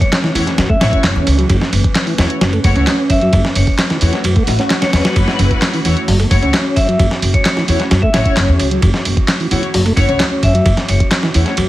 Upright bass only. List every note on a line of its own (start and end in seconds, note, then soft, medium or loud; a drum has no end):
0.35 0.43 E2 medium
0.58 0.66 F#2 medium
0.81 0.89 A1 loud
0.93 muted upright bass stroke soft
1.04 1.12 F#1 medium
1.16 1.23 E2 loud
1.27 1.43 C#2 loud
1.50 1.58 F#1 loud
1.72 1.80 F#1 medium
2.18 2.26 E2 medium
2.41 2.57 F#1 medium
2.64 2.72 F#1 loud
2.75 2.83 C#2 loud
3.10 3.26 F#2 medium
3.33 3.41 F#1 loud
3.56 3.64 F#1 medium
4.01 4.09 E2 loud
4.24 4.32 F#2 medium
4.47 4.55 A1 loud
4.93 5.01 E2 medium
5.16 5.24 F#1 medium
5.39 5.47 F#1 loud
5.85 5.93 E2 medium
6.08 6.23 F#1 medium
6.31 6.39 F#1 loud
6.42 6.50 C#2 loud
6.77 6.92 F#2 medium
7.00 7.07 F#1 loud
7.22 7.30 F#1 medium
7.68 7.76 E2 medium
7.91 7.99 F#2 medium
8.14 8.22 A1 loud
8.25 muted upright bass stroke soft
8.37 8.45 F#1 medium
8.49 8.56 E2 loud
8.60 8.76 C#2 loud
8.83 8.91 F#1 loud
9.06 9.13 F#1 medium
9.51 9.59 E2 medium
9.74 9.90 F#1 medium
9.97 10.05 F#1 loud
10.09 10.16 C#2 loud
10.43 10.59 F#2 medium
10.66 10.74 F#1 loud
10.89 10.97 F#1 loud
11.35 11.43 E2 medium
11.58 11.65 F#2 medium